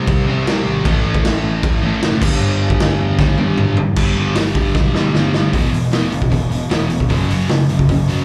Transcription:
Already playing: C3 G3 C4
0.07 C2, kick, crash
0.27 C2 C3 G3 C4
0.45 C2 C3 G3 C4, snare, crash
0.66 G#1
0.84 A1 A2 E3 A3, kick, crash
1.06 A1
1.15 kick
1.24 A1, snare, crash
1.44 A1
1.63 A1, kick, crash
1.82 A1 A2 E3 A3
2.01 F#1 A2 E3 A3, snare, crash
2.20 G1 G2 D3 G3, kick, crash
2.41 G1, crash
2.70 kick
2.80 G1, snare, crash
3.00 E2
3.19 G1 G2 D3 G3, kick, snare
3.38 G1 G2 D3 G3, high tom
3.58 G1, mid tom
3.77 G1, floor tom
3.96 G1 G2 D3 G3, kick, crash
4.17 G2 D3 G3
4.35 G1 G2 D3 G3, snare, open hi-hat
4.55 G2 D3 G3, kick
4.75 B1 G2 D3 G3, kick, snare
4.94 B1 G2 D3 G3, snare
5.14 E2 G2 D3 G3, snare
5.34 G1 G2 D3 G3, snare
5.53 E1 E2 B2 E3, kick, open hi-hat
5.73 E1 E2 B2, open hi-hat
5.92 E1 E2 B2 E3, snare, open hi-hat
6.11 E1 E2 B2, open hi-hat
6.22 kick
6.30 E1 E2 B2, kick, open hi-hat
6.50 E2 B2, open hi-hat
6.70 E1 E2 B2 E3, snare, open hi-hat
6.90 E2 B2, open hi-hat
7.00 kick
7.09 F#1 F#2 C#3 F#3, kick, open hi-hat
7.29 F#1 F#2 C#3 F#3, open hi-hat
7.49 F#1 F#2 C#3, snare, open hi-hat
7.69 F#1 F#2 C#3, open hi-hat
7.79 kick
7.89 F#1 F#2 C#3, kick, open hi-hat
8.08 F#2 C#3 F#3, open hi-hat

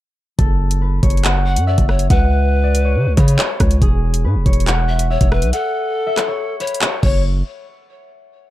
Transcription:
0.39 F#1 A4, kick, closed hi-hat
0.71 closed hi-hat
0.82 B4
1.03 F#1 C#5, kick, closed hi-hat
1.10 closed hi-hat
1.17 closed hi-hat
1.24 F#5, clap, closed hi-hat
1.46 F#5
1.56 F#2, closed hi-hat
1.67 D5 E5
1.78 F#1, kick, closed hi-hat
1.89 C#5, cross-stick
1.99 closed hi-hat
2.10 C#2 B4 F#5, kick, closed hi-hat
2.64 D5
2.75 closed hi-hat
2.85 C#5
2.96 C#3
3.07 C#2
3.17 C#3 B4 C#5, kick, closed hi-hat
3.28 closed hi-hat
3.39 C#5, clap
3.60 C#2, kick, cross-stick, closed hi-hat
3.71 closed hi-hat
3.82 E1 G#4, kick, closed hi-hat
4.14 closed hi-hat
4.25 G#2 B4
4.35 E1
4.46 E1 C#5, kick, closed hi-hat
4.53 closed hi-hat
4.60 closed hi-hat
4.67 F#5, clap, closed hi-hat
4.89 E5
4.99 closed hi-hat
5.10 C#5 E5
5.21 E1, kick, closed hi-hat
5.32 B4, cross-stick
5.42 B1, closed hi-hat
5.53 A4 F#5, closed hi-hat
6.07 E5
6.17 cross-stick, clap, closed hi-hat
6.28 C#5
6.60 B4 C#5, closed hi-hat
6.67 closed hi-hat
6.74 closed hi-hat
6.82 C#5, clap
7.03 F#1 C#5, kick, crash

